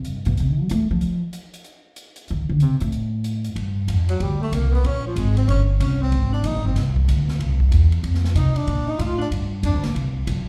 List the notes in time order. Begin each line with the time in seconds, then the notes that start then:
0.05 G2, closed hi-hat
0.25 B2, closed hi-hat
0.37 C3, closed hi-hat
0.51 D#3
0.61 F#3
0.69 A3, closed hi-hat
0.91 F3
1.01 closed hi-hat
1.33 closed hi-hat
1.54 closed hi-hat
1.64 closed hi-hat
1.96 closed hi-hat
2.16 closed hi-hat
2.28 D#3, closed hi-hat
2.49 D3
2.60 C3, closed hi-hat
2.80 A2, closed hi-hat
2.92 closed hi-hat
3.24 closed hi-hat
3.44 closed hi-hat
3.56 G2, kick, ride
3.88 F2, kick, hi-hat pedal, ride
4.08 F#3, ride
4.20 D2 G3, kick, ride
4.41 A3
4.52 C2 A#3, kick, hi-hat pedal, ride
4.71 B3
4.84 A#1 C#4, kick, ride
5.05 F3
5.16 G#1 G#3, kick, hi-hat pedal, ride
5.37 C4, ride
5.48 G1 C#4, kick, ride
5.79 C2 C#4, kick, hi-hat pedal, ride
6.01 C4
6.12 G#1, kick, ride
6.32 D4
6.43 A#1 D#4, kick, hi-hat pedal, ride
6.54 G#1
6.64 G1 C4
6.75 C2, kick, snare, ride
6.96 kick
7.08 D2, kick, hi-hat pedal, ride
7.28 snare
7.39 C2, kick, ride
7.60 kick
7.71 E2, kick, hi-hat pedal, ride
7.92 ride
8.03 F2, kick, ride
8.14 snare
8.24 snare
8.35 C3 D#4, kick, hi-hat pedal, ride
8.55 D4, ride
8.67 A#2, kick, ride
8.87 D#4
8.98 A2 F4, kick, hi-hat pedal, ride
9.18 D4
9.31 G2, kick, ride
9.63 F2 D4, kick, hi-hat pedal, ride
9.74 D2
9.83 A#1 A#3, snare, ride
9.95 C2, kick, ride
10.27 B1, kick, hi-hat pedal, ride